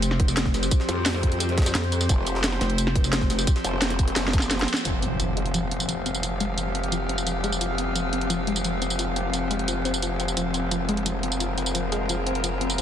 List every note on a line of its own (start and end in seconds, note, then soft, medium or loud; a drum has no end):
0.00 0.70 F1 loud
0.00 4.81 F3 medium
0.00 4.81 C4 medium
0.00 4.81 G4 medium
0.00 4.83 C5 medium
0.00 closed hi-hat medium
0.00 tambourine medium
0.11 snare medium
0.20 kick loud
0.20 closed hi-hat medium
0.28 snare soft
0.28 closed hi-hat soft
0.28 tambourine medium
0.37 snare loud
0.37 closed hi-hat loud
0.37 closed hi-hat medium
0.37 tambourine soft
0.46 kick medium
0.46 snare medium
0.54 snare medium
0.54 closed hi-hat medium
0.54 tambourine soft
0.63 snare medium
0.63 tambourine medium
0.71 kick loud
0.71 closed hi-hat medium
0.71 tambourine medium
0.80 snare soft
0.89 1.73 F2 loud
0.89 closed hi-hat medium
0.89 tambourine soft
1.06 snare loud
1.06 closed hi-hat medium
1.06 open hi-hat medium
1.06 tambourine medium
1.15 snare soft
1.23 kick medium
1.23 closed hi-hat medium
1.32 closed hi-hat soft
1.40 closed hi-hat medium
1.40 closed hi-hat loud
1.40 tambourine medium
1.49 closed hi-hat soft
1.58 kick loud
1.58 snare medium
1.58 closed hi-hat medium
1.62 snare medium
1.62 closed hi-hat medium
1.66 snare loud
1.66 closed hi-hat medium
1.66 closed hi-hat soft
1.66 tambourine medium
1.75 2.08 F2 loud
1.75 snare loud
1.75 closed hi-hat medium
1.75 tambourine medium
1.83 closed hi-hat soft
1.92 closed hi-hat medium
1.92 tambourine soft
2.01 snare soft
2.01 tambourine medium
2.09 2.60 F1 loud
2.09 kick loud
2.09 closed hi-hat medium
2.09 tambourine medium
2.27 closed hi-hat medium
2.27 tambourine soft
2.35 snare soft
2.44 snare loud
2.44 closed hi-hat loud
2.44 closed hi-hat medium
2.44 tambourine medium
2.52 snare medium
2.52 snare soft
2.61 3.46 F1 loud
2.61 snare soft
2.61 closed hi-hat medium
2.70 closed hi-hat soft
2.78 closed hi-hat loud
2.78 closed hi-hat medium
2.78 tambourine medium
2.87 snare medium
2.96 kick loud
2.96 closed hi-hat medium
3.04 snare soft
3.04 closed hi-hat soft
3.04 tambourine medium
3.13 snare loud
3.13 closed hi-hat loud
3.13 closed hi-hat medium
3.13 tambourine medium
3.21 kick medium
3.21 snare medium
3.30 snare medium
3.30 closed hi-hat medium
3.30 tambourine soft
3.39 snare medium
3.39 tambourine medium
3.47 kick loud
3.47 closed hi-hat loud
3.47 closed hi-hat medium
3.47 tambourine soft
3.56 snare soft
3.56 closed hi-hat soft
3.64 4.15 F1 loud
3.64 closed hi-hat medium
3.64 tambourine soft
3.82 snare loud
3.82 closed hi-hat loud
3.82 closed hi-hat medium
3.82 tambourine medium
3.90 snare soft
3.90 closed hi-hat medium
3.99 kick medium
3.99 closed hi-hat medium
3.99 tambourine soft
4.08 closed hi-hat soft
4.08 closed hi-hat medium
4.16 4.67 F1 loud
4.16 snare medium
4.16 snare loud
4.16 closed hi-hat loud
4.16 open hi-hat medium
4.16 tambourine medium
4.28 snare medium
4.33 kick loud
4.33 closed hi-hat medium
4.33 tambourine soft
4.39 snare medium
4.39 closed hi-hat soft
4.39 tambourine medium
4.51 snare medium
4.51 closed hi-hat loud
4.51 closed hi-hat medium
4.51 tambourine medium
4.59 snare loud
4.59 closed hi-hat medium
4.68 closed hi-hat medium
4.68 tambourine soft
4.74 snare loud
4.74 closed hi-hat medium
4.74 tambourine medium
4.85 10.35 F1 medium
4.85 4.93 F3 medium
4.85 12.82 F3 medium
4.85 12.82 C4 medium
4.85 10.33 G4 medium
4.85 10.35 F5 medium
4.85 closed hi-hat medium
4.85 tambourine soft
4.85 impact medium
5.02 5.14 C4 medium
5.02 closed hi-hat medium
5.02 tambourine soft
5.20 5.31 F3 medium
5.20 closed hi-hat medium
5.20 tambourine soft
5.37 5.42 G#3 loud
5.37 closed hi-hat medium
5.46 closed hi-hat soft
5.54 5.62 F3 medium
5.54 closed hi-hat medium
5.54 tambourine soft
5.71 5.79 C4 medium
5.71 closed hi-hat medium
5.80 closed hi-hat soft
5.80 tambourine medium
5.89 5.96 F3 medium
5.89 closed hi-hat medium
5.89 tambourine soft
6.06 6.18 C4 medium
6.06 closed hi-hat medium
6.06 tambourine soft
6.15 tambourine medium
6.23 6.35 F3 medium
6.23 closed hi-hat medium
6.23 tambourine soft
6.40 6.45 G#3 medium
6.40 closed hi-hat medium
6.40 tambourine soft
6.58 6.65 F3 medium
6.58 closed hi-hat medium
6.58 tambourine soft
6.75 6.83 C4 medium
6.75 closed hi-hat medium
6.83 closed hi-hat soft
6.92 7.00 F3 medium
6.92 closed hi-hat medium
6.92 tambourine soft
7.09 7.21 C4 medium
7.09 closed hi-hat medium
7.18 closed hi-hat soft
7.18 tambourine medium
7.27 7.38 F3 medium
7.27 closed hi-hat medium
7.27 tambourine soft
7.44 7.49 G#3 loud
7.44 closed hi-hat medium
7.44 tambourine soft
7.52 tambourine medium
7.61 7.69 F3 medium
7.61 closed hi-hat medium
7.61 tambourine soft
7.78 7.86 C4 medium
7.78 closed hi-hat medium
7.78 tambourine soft
7.96 8.03 F3 medium
7.96 closed hi-hat medium
7.96 tambourine soft
8.13 8.25 C4 medium
8.13 closed hi-hat medium
8.21 closed hi-hat soft
8.30 8.42 F3 medium
8.30 closed hi-hat medium
8.30 tambourine soft
8.47 8.52 G#3 loud
8.47 closed hi-hat medium
8.56 closed hi-hat soft
8.56 tambourine medium
8.64 8.72 F3 medium
8.64 closed hi-hat medium
8.64 tambourine soft
8.82 8.90 C4 medium
8.82 closed hi-hat medium
8.82 tambourine soft
8.90 tambourine medium
8.99 9.07 F3 medium
8.99 closed hi-hat medium
8.99 tambourine soft
9.16 9.28 C4 medium
9.16 closed hi-hat medium
9.16 tambourine soft
9.33 9.45 F3 medium
9.33 closed hi-hat medium
9.33 tambourine soft
9.51 9.55 G#3 loud
9.51 closed hi-hat medium
9.51 tambourine soft
9.59 closed hi-hat soft
9.68 9.76 F3 medium
9.68 closed hi-hat medium
9.68 tambourine soft
9.85 9.93 C4 medium
9.85 closed hi-hat medium
9.85 tambourine soft
9.94 closed hi-hat soft
9.94 tambourine medium
10.02 10.10 F3 medium
10.02 closed hi-hat medium
10.02 tambourine soft
10.20 10.31 C4 medium
10.20 closed hi-hat medium
10.20 tambourine soft
10.28 tambourine medium
10.37 12.82 F1 medium
10.37 10.45 F3 medium
10.37 12.82 G#4 medium
10.37 12.82 A#4 medium
10.37 closed hi-hat medium
10.37 tambourine soft
10.54 10.66 C4 medium
10.54 closed hi-hat medium
10.54 tambourine soft
10.71 10.83 F3 medium
10.71 closed hi-hat medium
10.71 tambourine soft
10.89 10.93 G#3 loud
10.89 closed hi-hat medium
10.97 closed hi-hat soft
11.06 11.14 F3 medium
11.06 closed hi-hat medium
11.06 tambourine soft
11.23 11.31 C4 medium
11.23 closed hi-hat medium
11.32 closed hi-hat soft
11.32 tambourine medium
11.40 11.48 F3 medium
11.40 closed hi-hat medium
11.40 tambourine soft
11.58 11.69 C4 medium
11.58 closed hi-hat medium
11.58 tambourine soft
11.66 tambourine medium
11.75 11.87 F3 medium
11.75 closed hi-hat medium
11.75 tambourine soft
11.92 11.97 G#3 loud
11.92 closed hi-hat medium
11.92 tambourine soft
12.09 12.17 F3 medium
12.09 closed hi-hat medium
12.09 tambourine soft
12.27 12.34 C4 medium
12.27 closed hi-hat medium
12.35 closed hi-hat soft
12.44 12.52 F3 medium
12.44 closed hi-hat medium
12.44 tambourine soft
12.61 12.73 C4 medium
12.61 closed hi-hat medium
12.70 closed hi-hat soft
12.70 tambourine medium
12.78 12.82 F3 medium
12.78 closed hi-hat medium
12.78 tambourine soft